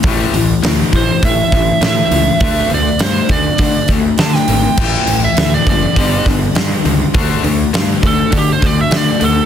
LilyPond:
<<
  \new Staff \with { instrumentName = "Lead electric guitar" } { \time 4/4 \key d \dorian \tempo 4 = 102 r4. c''8 e''4 e''4~ | e''8 d''8 c''8 d''4 r8 a''16 g''8.~ | g''8. e''8 d''16 d''4 r4. | r4. a'8 g'16 c''16 d''16 e''16 d''8 a'8 | }
  \new Staff \with { instrumentName = "Distorted electric guitar" } { \clef bass \time 4/4 \key d \dorian <a, e a>8 <a, e>8 <a, e>8 <a, e>8 <a, e>8 <a, e>8 <a, e>8 <a, e>8 | <d a d'>8 <d a>8 <d a>8 <d a>8 <d a>8 <d a>8 <d a>8 <d a>8 | <a, e a>8 <a, e>8 <a, e>8 <a, e>8 <g, d g>8 <g, d>8 <g, d>8 <g, d>8 | <d a d'>8 <d a>8 <d a>8 <d a>8 <d a>8 <d a>8 <d a>8 <d a>8 | }
  \new Staff \with { instrumentName = "Picked electric bass" } { \clef bass \time 4/4 \key d \dorian a,,8 a,,8 d,8 a,,8 a,8 a,,8 a,8 cis,8 | d,8 d,8 g,8 d,8 d8 d,8 d8 gis,,8 | a,,8 a,,8 d,8 fis,,8 g,,8 g,,8 g,8 cis,8 | d,8 d,8 g,8 d,8 d8 d,8 d8 d,8 | }
  \new DrumStaff \with { instrumentName = "Drums" } \drummode { \time 4/4 <hho bd>8 hho8 <hho sn>8 <hho bd>8 <hho bd>8 <hho bd>8 <hho sn>8 hho8 | <hho bd>8 hho8 <hho sn>8 <hho bd>8 <hho bd>8 <hho bd>8 <hho sn>16 sn16 hho8 | <cymc bd>8 hho8 <hho sn>8 <hho bd>8 <hho bd>8 <hho bd>8 <hho sn>8 hho8 | <hho bd>8 hho8 <hho sn>8 <hho bd>8 <hho bd>8 <hho bd>8 <hho sn>8 hho8 | }
>>